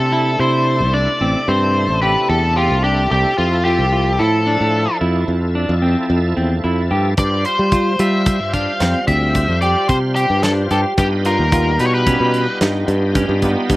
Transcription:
Already playing: tonewheel organ C3 A3 D4 E4, lead electric guitar A4
0.00 fingered electric bass C3
0.12 clean electric guitar E4
0.39 fingered electric bass C3, clean electric guitar E4, lead electric guitar C5
0.80 fingered electric bass C2
0.94 clean electric guitar D4, lead electric guitar D5
1.21 fingered electric bass A1, clean electric guitar C4
1.48 fingered electric bass G2, clean electric guitar C4, lead electric guitar C5
1.89 fingered electric bass A1
2.02 clean electric guitar G4, lead electric guitar B4
2.29 fingered electric bass E2, lead electric guitar A4
2.56 lead electric guitar F4, clean electric guitar G4
2.70 fingered electric bass C2
2.84 clean electric guitar D4, lead electric guitar G4
3.11 fingered electric bass C2, lead electric guitar G4, clean electric guitar G4
3.37 fingered electric bass F2, tonewheel organ F3 E4 A4, lead electric guitar F4
3.65 clean electric guitar F4, lead electric guitar G4
3.79 fingered electric bass C2
3.92 clean electric guitar F4
4.19 fingered electric bass A2, clean electric guitar E4, lead electric guitar A4
4.47 clean electric guitar D4
4.60 fingered electric bass A2
5.01 fingered electric bass F2, clean electric guitar E4
5.28 fingered electric bass F2
5.55 clean electric guitar D4
5.69 fingered electric bass F2
5.82 clean electric guitar C4
6.10 fingered electric bass F2
6.37 fingered electric bass E2, clean electric guitar C4
6.64 fingered electric bass F2, clean electric guitar E4
6.91 fingered electric bass G2, clean electric guitar G4
7.17 fingered electric bass G2, tonewheel organ G3 F4 C5, lead electric guitar D5, kick, closed hi-hat
7.45 lead electric guitar C5, closed hi-hat
7.59 fingered electric bass G3
7.72 clean electric guitar F4, kick, closed hi-hat
7.99 fingered electric bass G3, clean electric guitar F4, lead electric guitar E5, closed hi-hat
8.26 kick, closed hi-hat
8.40 fingered electric bass G2
8.53 clean electric guitar D4, lead electric guitar F5, kick, closed hi-hat
8.80 fingered electric bass F2, clean electric guitar C4, snare, closed hi-hat
9.07 fingered electric bass D2, clean electric guitar C4, lead electric guitar E5, kick, closed hi-hat
9.35 kick, closed hi-hat
9.48 fingered electric bass F2
9.61 clean electric guitar G4, lead electric guitar D5, closed hi-hat
9.89 fingered electric bass C3, lead electric guitar C5, kick, closed hi-hat
10.16 lead electric guitar G4, clean electric guitar G4, closed hi-hat
10.30 fingered electric bass G2
10.43 clean electric guitar D4, lead electric guitar A4, snare, closed hi-hat
10.71 fingered electric bass G2, clean electric guitar G4, lead electric guitar A4, closed hi-hat
10.97 fingered electric bass G2, tonewheel organ G3 B3 D#4 F4 G4, lead electric guitar G4, kick, closed hi-hat
11.25 clean electric guitar F4, lead electric guitar A#4, closed hi-hat
11.39 fingered electric bass D#2
11.52 clean electric guitar F4, kick, closed hi-hat
11.80 fingered electric bass B2, clean electric guitar D#4, lead electric guitar B4, snare, closed hi-hat
11.87 lead electric guitar C#5
11.95 lead electric guitar B4
12.07 clean electric guitar C#4, kick, closed hi-hat
12.20 fingered electric bass B2
12.34 closed hi-hat
12.61 fingered electric bass G2, clean electric guitar D#4, snare, closed hi-hat
12.88 fingered electric bass G2, closed hi-hat
13.15 clean electric guitar C#4, kick, closed hi-hat
13.29 fingered electric bass G2
13.42 clean electric guitar B3, kick, closed hi-hat
13.70 fingered electric bass G2, kick, closed hi-hat

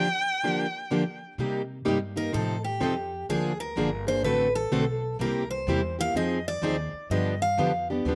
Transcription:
Already playing: violin G5
0.44 steel-string acoustic guitar D3 F3 A#3 D4 G4
0.91 steel-string acoustic guitar D3 F3 A#3 D4 G4
1.38 upright bass C3, steel-string acoustic guitar C3 G3 A#3 D#4 G4
1.85 upright bass G2, steel-string acoustic guitar C3 G3 A#3 D#4 G4
2.16 steel-string acoustic guitar A#3 D#4 G4 A#4
2.32 upright bass A2, steel-string acoustic guitar C3 F3 C4 D#4 A4
2.64 steel-string acoustic guitar G4
2.80 upright bass F2, steel-string acoustic guitar C3 F3 C4 D#4 A4
3.29 upright bass D2, steel-string acoustic guitar D3 F3 A#3 D4 G#4
3.60 steel-string acoustic guitar A#4
3.76 upright bass G1, steel-string acoustic guitar D3 F3 A#3 D4 G#4
4.07 steel-string acoustic guitar A#3 D4 G#4 C5
4.23 upright bass A1, steel-string acoustic guitar D3 A3 C4 F#4 A4 B4
4.55 steel-string acoustic guitar A4
4.72 upright bass B1, steel-string acoustic guitar D3 A3 C4 F#4 A4
5.20 upright bass C2, steel-string acoustic guitar C3 G3 A#3 E4 G4 A#4
5.51 steel-string acoustic guitar C5
5.67 upright bass E2, steel-string acoustic guitar C3 G3 A#3 E4 G4
5.99 steel-string acoustic guitar A#3 E4 G4 F5
6.14 upright bass F2, steel-string acoustic guitar F3 C4 D#4 G#4 D#5
6.48 steel-string acoustic guitar D5
6.62 upright bass D#2, steel-string acoustic guitar F3 C4 D#4 G#4
6.93 muted upright bass stroke
7.10 upright bass G2, steel-string acoustic guitar D3 F3 B3 D4 G4 D#5
7.42 steel-string acoustic guitar F5
7.58 upright bass F2, steel-string acoustic guitar D3 F3 B3 D4 G4
7.90 steel-string acoustic guitar B3 D4 G4
8.05 upright bass D#2, steel-string acoustic guitar D3 F3 B3 D4 G4

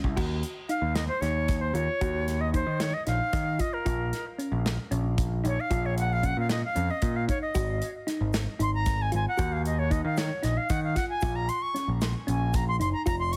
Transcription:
0.04 picked electric bass C2, kick
0.16 picked electric bass D#2, synth arpeggio sound F#4, kick, crash
0.43 closed hi-hat
0.69 synth arpeggio sound D#4, flute F5, closed hi-hat
0.82 picked electric bass D#2
0.95 flute D#5, snare, closed hi-hat
1.08 flute C5
1.21 picked electric bass D#2, synth arpeggio sound D#4, flute C#5, snare, closed hi-hat
1.48 kick, snare, closed hi-hat
1.61 flute C5
1.74 picked electric bass D#2, synth arpeggio sound F4, flute C#5, closed hi-hat
2.01 picked electric bass D#2, synth arpeggio sound F#4, kick, closed hi-hat
2.28 snare, closed hi-hat
2.41 flute D#5
2.54 synth arpeggio sound D#4, flute C5, kick, closed hi-hat
2.67 picked electric bass D#3
2.80 flute C#5, snare, closed hi-hat
2.94 flute D#5
3.07 picked electric bass A#1, synth arpeggio sound D#4, flute F5, snare, closed hi-hat
3.33 picked electric bass D#3, kick, snare, closed hi-hat
3.59 synth arpeggio sound F4, flute D#5, kick, closed hi-hat
3.73 flute A#4
3.85 picked electric bass A#1, synth arpeggio sound F4, kick, closed hi-hat
4.13 snare, closed hi-hat
4.38 synth arpeggio sound C#4, closed hi-hat
4.52 picked electric bass A#1
4.66 snare, closed hi-hat
4.91 picked electric bass A#1, synth arpeggio sound C#4, closed hi-hat
5.18 kick, closed hi-hat
5.44 picked electric bass A#1, synth arpeggio sound D#4, flute C#5, closed hi-hat
5.60 flute F5
5.70 picked electric bass A#1, synth arpeggio sound F4, kick, closed hi-hat
5.86 flute C#5
5.98 flute F#5, closed hi-hat
6.13 flute F5
6.23 synth arpeggio sound C#4, flute F#5, kick, closed hi-hat
6.37 picked electric bass A#2, flute F5
6.49 flute D#5, snare, closed hi-hat
6.65 flute F5
6.75 picked electric bass F2, synth arpeggio sound C#4, closed hi-hat
6.91 flute D#5
7.02 picked electric bass A#2, kick, closed hi-hat
7.16 flute F5
7.28 synth arpeggio sound D#4, flute C#5, kick, closed hi-hat
7.42 flute D#5
7.55 picked electric bass G#1, synth arpeggio sound F#4, kick, closed hi-hat, shaker
7.82 closed hi-hat
8.07 synth arpeggio sound D#4, snare, closed hi-hat
8.21 picked electric bass G#1
8.33 snare, closed hi-hat, shaker
8.59 picked electric bass G#1, synth arpeggio sound D#4, flute C6, closed hi-hat
8.74 flute A#5
8.86 kick, snare, closed hi-hat, shaker
9.02 flute G#5
9.12 picked electric bass G#1, synth arpeggio sound F4, flute G#5, closed hi-hat
9.28 flute F#5
9.37 picked electric bass D#2, synth arpeggio sound F#4, kick, closed hi-hat, shaker
9.52 flute F5
9.65 flute D#5, closed hi-hat
9.79 flute C#5
9.90 synth arpeggio sound D#4, flute D#5, kick, closed hi-hat
10.05 picked electric bass D#3, flute F5
10.17 flute C#5, snare, closed hi-hat, shaker
10.43 picked electric bass A#1, synth arpeggio sound D#4, flute D#5, snare, closed hi-hat
10.57 flute F5
10.69 picked electric bass D#3, flute F#5, kick, closed hi-hat, shaker
10.84 flute F5
10.96 synth arpeggio sound F4, flute F#5, kick, snare, closed hi-hat
11.09 flute G#5
11.21 picked electric bass A#1, synth arpeggio sound F4, kick, closed hi-hat, shaker
11.36 flute A#5
11.49 flute C6, closed hi-hat
11.62 flute C#6
11.74 synth arpeggio sound C#4, snare, closed hi-hat
11.88 picked electric bass A#1
12.01 snare, closed hi-hat, shaker
12.27 picked electric bass A#1, synth arpeggio sound C#4, flute G#5, closed hi-hat
12.53 flute A#5, kick, closed hi-hat, shaker
12.68 flute C6
12.80 picked electric bass F#1, synth arpeggio sound D#4, flute C6, closed hi-hat
12.93 flute A#5
13.06 picked electric bass F1, synth arpeggio sound F4, flute A#5, kick, closed hi-hat, shaker
13.19 flute C6
13.32 flute C#6, closed hi-hat

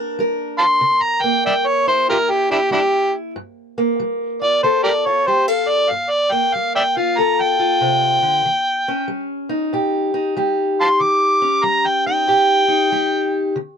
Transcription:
Already playing: steel-string acoustic guitar G2 A#3 D4 A#4
0.19 steel-string acoustic guitar G3 A#4
0.58 harmonica F5 A5 C6
0.81 steel-string acoustic guitar C#3
1.02 harmonica A#5
1.22 steel-string acoustic guitar A#3, harmonica G5
1.46 steel-string acoustic guitar G3, harmonica D5 E5 G5
1.67 harmonica C#5
1.87 steel-string acoustic guitar E4, harmonica C5
2.09 steel-string acoustic guitar G2 E4, harmonica F4 G4 A#4
2.31 harmonica G4
2.51 harmonica D4 E4 G4, steel-string acoustic guitar E4
2.71 steel-string acoustic guitar G3 E4, harmonica D4 E4 G4
3.36 steel-string acoustic guitar G2
3.78 steel-string acoustic guitar A#3
4.00 steel-string acoustic guitar G3
4.42 steel-string acoustic guitar F4, harmonica D5
4.63 steel-string acoustic guitar D3 A4, harmonica C5
4.83 harmonica G4 A#4 D5
5.06 steel-string acoustic guitar F4, harmonica C#5
5.27 steel-string acoustic guitar G3 G4, harmonica C5
5.48 steel-string acoustic guitar A4, harmonica F5
5.69 harmonica D5
5.91 steel-string acoustic guitar G2, harmonica F5
6.10 harmonica D5
6.32 steel-string acoustic guitar A#3, harmonica G5
6.54 steel-string acoustic guitar G3, harmonica F5
6.75 harmonica D5 E5 G5
6.97 steel-string acoustic guitar F4, harmonica F5
7.18 steel-string acoustic guitar D3 A4, harmonica A#5
7.42 harmonica G5
7.59 steel-string acoustic guitar F4
7.81 steel-string acoustic guitar C3
8.22 steel-string acoustic guitar D3
8.45 steel-string acoustic guitar D#3
8.88 steel-string acoustic guitar C#4
9.08 steel-string acoustic guitar G3
9.49 steel-string acoustic guitar D#4
9.73 steel-string acoustic guitar A#2 G4
10.14 steel-string acoustic guitar D#4
10.37 steel-string acoustic guitar G3 G4
10.81 harmonica F5 A5 C6
11.00 steel-string acoustic guitar D#3, harmonica D6
11.42 steel-string acoustic guitar C#4
11.63 steel-string acoustic guitar G3, harmonica A#5
11.87 harmonica G5
12.07 steel-string acoustic guitar D#4, harmonica G5
12.28 steel-string acoustic guitar A#2 G4
12.68 steel-string acoustic guitar D#4
12.92 steel-string acoustic guitar G3 G4
13.56 steel-string acoustic guitar D3

